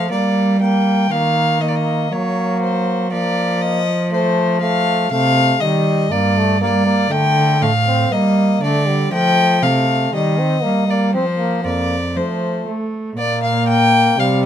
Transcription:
0.00 0.12 F3 medium
0.10 1.11 G3 medium
0.10 0.60 A#3 medium
0.10 0.60 D5 medium
0.61 1.10 A#3 soft
0.61 1.13 G5 medium
1.11 2.10 D#3 medium
1.11 1.60 A#3 medium
1.11 1.62 F5 medium
1.61 2.10 A#3 medium
1.61 1.70 D#5 medium
1.69 1.77 D5 medium
1.75 2.14 D#5 medium
2.12 3.14 F#3 medium
2.12 3.10 A#3 medium
2.12 2.61 C#5 medium
2.62 3.11 C5 medium
3.11 5.12 F3 medium
3.11 3.82 A#3 medium
3.11 3.64 D5 medium
3.62 4.12 D#5 medium
4.12 4.59 A3 medium
4.12 4.61 C5 medium
4.61 5.10 A3 medium
4.61 5.10 F5 medium
5.11 5.59 C3 medium
5.11 5.63 A3 medium
5.11 5.62 F5 loud
5.60 6.11 D#3 medium
5.60 6.12 G3 medium
5.60 6.13 D#5 medium
6.11 6.63 G2 medium
6.11 6.39 A#3 medium
6.11 6.62 D5 medium
6.38 6.61 A3 medium
6.61 7.10 G3 medium
6.61 6.86 A#3 medium
6.61 7.13 D5 medium
6.86 7.09 A#3 medium
7.10 7.63 D3 medium
7.10 7.60 A3 medium
7.10 7.63 G5 medium
7.61 8.11 A2 medium
7.61 7.72 A3 medium
7.61 8.14 F5 medium
7.87 8.14 C4 medium
8.11 8.61 G3 medium
8.11 8.64 A#3 medium
8.11 8.62 D#5 medium
8.62 9.11 D3 medium
8.62 8.89 A3 medium
8.62 9.12 D5 medium
8.88 9.11 G3 medium
9.12 9.64 F3 medium
9.12 9.62 A3 medium
9.12 9.64 G5 loud
9.62 10.13 C3 medium
9.62 10.15 A3 medium
9.62 10.13 F5 medium
10.14 10.63 D#3 medium
10.14 10.40 G3 medium
10.14 10.92 D#5 medium
10.39 10.64 C4 medium
10.63 11.16 G3 medium
10.63 10.87 A#3 medium
10.88 11.13 A#3 medium
10.88 11.14 D5 medium
11.14 11.66 F3 medium
11.14 11.26 C4 soft
11.14 11.64 C5 medium
11.38 11.63 A#3 soft
11.63 12.17 F2 medium
11.63 11.96 A#3 soft
11.63 12.18 D5 medium
12.14 12.67 F3 medium
12.14 12.88 A3 soft
12.14 12.67 C5 medium
12.67 13.17 A3 soft
13.17 14.15 A#2 medium
13.17 14.20 A#3 medium
13.17 13.42 D5 medium
13.43 13.67 F5 medium
13.68 14.21 G5 loud
14.18 14.46 C3 medium
14.18 14.46 G3 medium
14.18 14.44 F5 medium

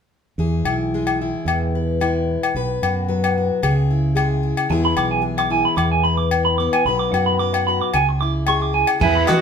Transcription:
0.38 0.61 E2 medium
0.38 2.51 E3 medium
0.38 0.93 G#4 soft
0.64 1.32 B1 medium
0.64 1.20 E4 soft
0.64 low agogo medium
0.94 1.99 G#3 medium
0.94 1.75 G#4 soft
1.07 low agogo medium
1.21 2.00 E4 soft
1.45 2.36 E2 medium
1.45 2.51 B2 medium
1.45 low agogo medium
1.75 2.52 B4 soft
2.00 2.51 G#3 medium
2.00 2.52 E4 medium
2.00 low agogo medium
2.43 low agogo medium
2.54 2.77 B1 medium
2.54 3.60 B2 medium
2.54 3.08 B4 medium
2.82 3.49 F#2 medium
2.82 3.36 F#4 medium
2.82 low agogo medium
3.08 3.62 F#3 medium
3.08 3.60 B4 soft
3.24 low agogo medium
3.38 3.60 F#4 medium
3.63 4.52 C#2 medium
3.63 4.69 C#3 medium
3.63 4.14 G#4 medium
3.63 low agogo medium
3.91 4.42 E4 soft
4.15 4.67 G#3 medium
4.15 4.70 G#4 medium
4.15 low agogo medium
4.43 4.67 E4 medium
4.57 low agogo medium
4.70 4.92 E2 medium
4.70 6.82 E3 medium
4.70 5.20 G#3 soft
4.70 6.59 B3 medium
4.70 4.95 E4 medium
4.70 5.22 G#4 medium
4.70 muted clean electric guitar stroke medium
4.85 4.96 B5 medium
4.96 5.64 B1 medium
4.96 5.49 E4 soft
4.96 5.10 D6 medium
4.96 low agogo medium
5.11 5.22 G#5 medium
5.22 6.30 G#3 medium
5.22 6.04 G#4 medium
5.38 5.50 D6 medium
5.38 low agogo medium
5.50 6.31 E4 medium
5.50 5.63 G#5 medium
5.65 5.76 B5 medium
5.76 6.67 E2 medium
5.76 6.82 B2 medium
5.76 5.90 D6 medium
5.76 low agogo medium
5.92 6.03 G#5 medium
6.04 6.82 B4 soft
6.04 6.16 B5 medium
6.17 6.29 D6 medium
6.31 6.83 E4 medium
6.31 low agogo medium
6.45 6.56 B5 medium
6.58 6.86 B3 medium
6.58 6.70 D6 medium
6.73 6.84 G#5 medium
6.73 low agogo medium
6.85 7.08 B1 medium
6.85 7.90 B2 medium
6.85 7.38 F#3 medium
6.85 7.91 D#4 medium
6.85 7.39 B4 medium
6.85 6.98 B5 medium
6.85 muted steel-string acoustic guitar stroke medium
6.99 7.11 D6 medium
7.12 7.80 F#2 medium
7.12 7.67 F#4 soft
7.12 7.24 F#5 medium
7.12 low agogo medium
7.26 7.37 B5 medium
7.39 7.93 F#3 medium
7.39 7.90 B4 soft
7.39 7.52 D6 medium
7.54 7.65 F#5 medium
7.54 low agogo medium
7.67 7.91 F#4 medium
7.67 7.79 B5 medium
7.81 7.92 D6 medium
7.94 8.83 C#2 medium
7.94 8.99 C#3 medium
7.94 8.48 G#4 medium
7.94 8.06 G#5 medium
7.94 low agogo medium
8.09 muted clean electric guitar stroke medium
8.21 8.72 E4 soft
8.21 8.33 D6 medium
8.47 8.98 G#3 medium
8.47 9.41 G#4 medium
8.47 8.60 C#6 medium
8.47 low agogo medium
8.62 8.73 D6 medium
8.73 8.97 E4 soft
8.73 8.86 G#5 medium
8.87 low agogo medium
9.00 9.23 E2 medium
9.00 9.41 E3 medium
9.00 9.41 G#3 soft
9.00 9.41 B3 medium
9.00 9.30 E4 medium
9.00 9.30 B4 medium
9.00 9.13 G#5 medium
9.00 kick medium
9.00 crash medium
9.00 muted conga soft
9.15 9.26 B5 medium
9.27 9.41 E3 medium
9.27 9.41 E4 soft
9.27 9.41 F#4 medium
9.27 9.41 D#5 medium
9.27 9.40 D6 medium
9.27 cross-stick medium
9.27 closed hi-hat soft
9.27 muted conga soft
9.27 low agogo medium

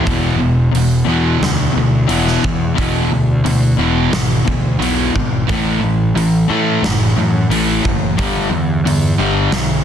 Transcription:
0.03 0.35 E1 medium
0.03 0.35 E2 medium
0.03 0.36 B2 loud
0.03 0.37 E3 medium
0.03 kick loud
0.03 open hi-hat soft
0.37 0.68 E1 medium
0.37 0.69 E2 medium
0.37 0.69 B2 medium
0.71 1.02 E1 medium
0.71 1.03 E2 medium
0.71 1.03 B2 medium
0.71 open hi-hat soft
0.76 1.05 E2 medium
0.76 1.06 B2 medium
1.05 1.37 E2 medium
1.05 1.36 E2 medium
1.05 1.38 B2 medium
1.05 1.39 E3 medium
1.09 1.40 B2 medium
1.09 1.41 E3 loud
1.39 1.70 D2 medium
1.39 1.71 E2 medium
1.39 1.71 B2 medium
1.43 1.73 E2 medium
1.43 snare loud
1.43 open hi-hat medium
1.72 2.04 D2 medium
1.72 2.05 E2 medium
1.72 2.05 B2 medium
1.78 2.07 E2 medium
1.78 2.07 B2 medium
2.07 2.38 E1 medium
2.07 2.40 E2 medium
2.07 2.41 B2 loud
2.07 2.41 E3 loud
2.07 open hi-hat medium
2.12 2.43 E3 loud
2.27 snare soft
2.42 2.73 E2 medium
2.42 2.74 B2 medium
2.42 kick medium
2.74 3.07 E1 medium
2.74 3.08 E2 medium
2.74 3.08 B2 medium
2.74 3.09 E3 loud
2.74 kick loud
2.79 open hi-hat medium
3.09 3.40 D2 medium
3.09 3.41 E2 medium
3.09 3.41 B2 medium
3.45 3.74 D2 medium
3.45 3.76 E2 medium
3.45 3.76 B2 medium
3.45 open hi-hat medium
3.77 4.07 E1 medium
3.77 4.10 E2 medium
3.77 4.09 B2 medium
3.77 4.11 E3 medium
4.11 4.41 G#1 medium
4.11 4.43 E2 medium
4.11 4.43 B2 medium
4.11 snare loud
4.11 open hi-hat medium
4.45 4.76 D2 medium
4.45 4.77 E2 medium
4.45 4.77 B2 medium
4.45 kick medium
4.79 5.08 B1 medium
4.79 5.12 E2 medium
4.79 5.13 B2 loud
4.79 5.13 E3 loud
4.79 open hi-hat medium
5.14 5.44 G#1 medium
5.14 5.45 E2 medium
5.14 5.46 B2 medium
5.14 kick medium
5.49 5.78 A1 loud
5.49 5.81 A2 medium
5.49 5.81 E3 loud
5.49 5.81 A3 loud
5.49 kick loud
5.49 open hi-hat soft
5.81 6.10 A1 medium
5.81 6.13 A2 medium
5.81 6.14 E3 medium
6.15 6.44 A1 medium
6.15 6.47 A2 medium
6.15 6.47 E3 medium
6.15 open hi-hat soft
6.48 6.81 A2 medium
6.48 6.78 A2 medium
6.48 6.81 E3 loud
6.48 6.81 A3 medium
6.82 7.11 F#1 medium
6.82 7.14 A2 medium
6.82 7.14 E3 medium
6.82 snare loud
6.82 open hi-hat medium
7.16 7.46 F#2 medium
7.16 7.48 A2 medium
7.16 7.48 E3 medium
7.49 7.79 A1 medium
7.49 7.82 A2 medium
7.49 7.82 E3 loud
7.49 7.83 A3 medium
7.49 open hi-hat medium
7.83 8.14 F#1 medium
7.83 8.14 A2 medium
7.83 8.15 E3 medium
7.83 kick medium
8.17 8.47 G1 medium
8.17 8.49 G2 medium
8.17 8.50 D3 loud
8.17 8.50 G3 loud
8.17 kick loud
8.17 open hi-hat medium
8.50 8.79 E2 medium
8.50 8.82 G2 medium
8.50 8.82 D3 medium
8.84 9.13 E2 medium
8.84 9.17 G2 medium
8.84 9.16 D3 medium
8.84 open hi-hat medium
9.19 9.48 G1 medium
9.19 9.51 G2 medium
9.19 9.51 D3 medium
9.19 9.52 G3 medium
9.52 9.81 B1 medium
9.52 9.83 G2 medium
9.52 9.84 D3 medium
9.52 snare loud
9.52 open hi-hat medium

